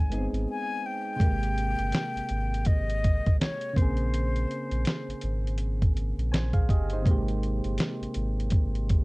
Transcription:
Already playing: G1 G#5
0.10 G#3 B3 D#4, closed hi-hat
0.14 C4 G#4
0.33 G#1, closed hi-hat
0.49 G#5
0.86 G5
1.16 C3 G#3, kick
1.20 G#1 A#3, closed hi-hat
1.25 G4
1.43 closed hi-hat
1.58 closed hi-hat
1.79 G1, closed hi-hat
1.92 snare, closed hi-hat
2.16 G#1, closed hi-hat
2.29 G#1, closed hi-hat
2.54 closed hi-hat
2.65 D#5, kick, closed hi-hat
2.90 closed hi-hat
3.04 kick, closed hi-hat
3.26 G#1, kick, closed hi-hat
3.40 C#5, snare, closed hi-hat
3.61 closed hi-hat
3.73 A#1 C#3 A#3 C5, kick
3.77 C4, closed hi-hat
3.82 G#4
3.97 closed hi-hat
4.14 closed hi-hat
4.36 closed hi-hat
4.51 closed hi-hat
4.71 A#1, closed hi-hat
4.85 snare, closed hi-hat
5.08 G#1, closed hi-hat
5.21 G#1, closed hi-hat
5.47 closed hi-hat
5.58 closed hi-hat
5.82 kick, closed hi-hat
5.97 closed hi-hat
6.18 A#1, closed hi-hat
6.32 A#1 C5 G#5, snare, closed hi-hat
6.53 G#4 F5, kick, closed hi-hat
6.69 G1 G4 D#5, kick, closed hi-hat
6.90 C5, closed hi-hat
6.94 D#4
7.02 G#1 C3 G#3, kick
7.07 A#3 G4, closed hi-hat
7.28 closed hi-hat
7.43 closed hi-hat
7.64 G1, closed hi-hat
7.78 snare, closed hi-hat
8.01 G#1, closed hi-hat
8.14 G#1, closed hi-hat
8.40 closed hi-hat
8.50 kick, closed hi-hat
8.75 closed hi-hat
8.89 kick, closed hi-hat

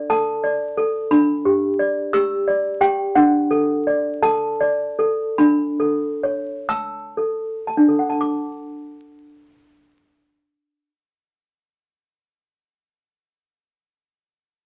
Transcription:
Already playing: D5
0.10 A4 A5
0.44 D5
0.77 A4
1.11 D4 B5
1.45 G4
1.79 D5
2.13 G4 E6
2.48 D5
2.81 G4 G5
3.15 D4 F#5
3.51 A4
3.87 D5
4.22 A4 A5
4.61 D5
4.99 A4
5.38 D4 B5
5.80 A4
6.23 C#5
6.69 A5 E6
7.17 A4
7.67 A5
7.77 D4
7.88 A4
7.99 F#5
8.10 A5
8.21 D6

